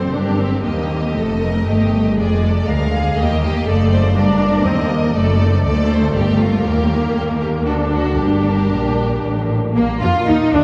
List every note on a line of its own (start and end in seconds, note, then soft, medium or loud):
0.00 0.15 F#1 medium
0.00 0.14 F#2 soft
0.00 0.12 C4 soft
0.00 0.15 C5 soft
0.14 0.65 G1 medium
0.14 0.65 G2 soft
0.14 0.40 D4 soft
0.14 0.65 G4 soft
0.14 0.66 A#4 soft
0.40 0.66 C4 soft
0.66 1.16 D#2 medium
0.66 1.16 A#3 soft
0.66 1.16 G4 soft
0.66 2.15 D#5 soft
1.17 1.67 F1 medium
1.17 1.67 F2 medium
1.17 2.16 A3 soft
1.17 1.43 A4 soft
1.42 1.67 A#4 medium
1.67 2.17 G1 medium
1.67 2.17 G2 medium
1.67 2.18 G4 medium
2.17 2.67 F1 medium
2.17 2.67 F2 medium
2.17 3.17 G#3 soft
2.17 2.42 G#4 medium
2.17 2.67 D5 soft
2.43 2.68 A4 soft
2.68 3.16 D2 medium
2.68 2.93 A#4 medium
2.68 3.17 F5 medium
2.93 3.17 G#4 medium
3.16 3.65 D#2 medium
3.16 3.67 A#3 medium
3.16 3.41 G4 medium
3.16 3.66 D#5 medium
3.42 3.67 G4 medium
3.66 4.15 F#1 medium
3.66 4.16 F#2 medium
3.66 4.16 A3 medium
3.66 3.92 A4 medium
3.66 4.16 D5 medium
3.92 4.16 C5 medium
4.16 4.66 G1 medium
4.16 4.66 G2 medium
4.16 4.65 D4 medium
4.16 5.16 A#4 soft
4.16 4.65 D5 medium
4.65 5.15 D#2 medium
4.65 4.90 C4 medium
4.65 5.15 D#5 medium
4.90 5.15 A#3 medium
5.14 5.64 F#1 medium
5.14 5.64 F#2 medium
5.14 5.38 A3 medium
5.14 5.64 A4 medium
5.14 5.63 D5 medium
5.39 6.62 A3 medium
5.64 6.14 D2 medium
5.64 6.15 A4 medium
5.64 5.89 D5 medium
5.90 6.15 C5 medium
6.15 6.65 G1 medium
6.15 6.65 G2 medium
6.15 6.40 G4 medium
6.15 7.66 A#4 medium
6.40 6.65 F4 medium
6.64 7.14 D#2 medium
6.64 7.67 A#3 medium
6.64 7.14 G4 medium
7.15 7.65 D#2 medium
7.15 7.66 D#2 medium
7.15 7.23 G4 medium
7.41 7.49 G4 soft
7.66 8.17 D2 medium
7.66 8.18 D2 medium
7.66 8.18 D4 medium
7.66 7.76 F#4 medium
7.66 8.17 A4 soft
7.94 8.19 F#4 soft
8.18 8.71 G1 medium
8.18 8.71 G2 soft
8.18 9.53 D4 soft
8.18 9.56 G4 soft
8.18 9.56 A#4 medium
8.70 9.24 A#1 soft
8.70 9.24 A#2 soft
9.23 9.75 A1 soft
9.23 9.75 A2 soft
9.75 10.00 A#1 medium
9.75 9.99 A#3 medium
9.75 9.84 A#3 medium
9.75 10.00 A#3 medium
9.75 9.85 A#3 medium
10.01 10.10 F2 medium
10.01 10.27 F4 medium
10.01 10.28 F4 medium
10.01 10.10 F4 medium
10.27 10.35 D#2 medium
10.27 10.53 D#4 medium
10.27 10.52 D#4 medium
10.27 10.36 D#4 soft
10.52 10.60 D2 medium
10.52 10.64 D4 medium
10.52 10.61 D4 medium
10.52 10.64 D4 medium